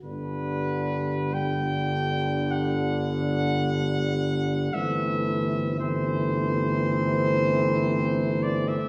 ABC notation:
X:1
M:4/4
L:1/16
Q:1/4=56
K:G
V:1 name="Cornet"
B4 g4 f8 | e4 c8- c2 d e |]
V:2 name="French horn section"
D4 D12 | C4 C12 |]
V:3 name="Euphonium" clef=bass
G,4 G,12 | A,4 A,12 |]
V:4 name="Trombone" clef=bass
D,4 D,12 | E,4 E,12 |]
V:5 name="Tuba" clef=bass
G,,,16 | G,,,16 |]